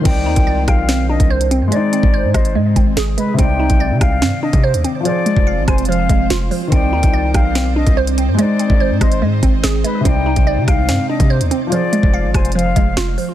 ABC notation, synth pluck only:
X:1
M:4/4
L:1/8
Q:1/4=144
K:Cm
V:1 name="Synth pluck"
C E d g C D c C | A, C c e A, C A A, | C E d g C D c C | F, A, f a F, A, F F, |
C E d g C D c C | A, C c e A, C A A, | C E d g C D c C | F, A, f a F, A, F F, |]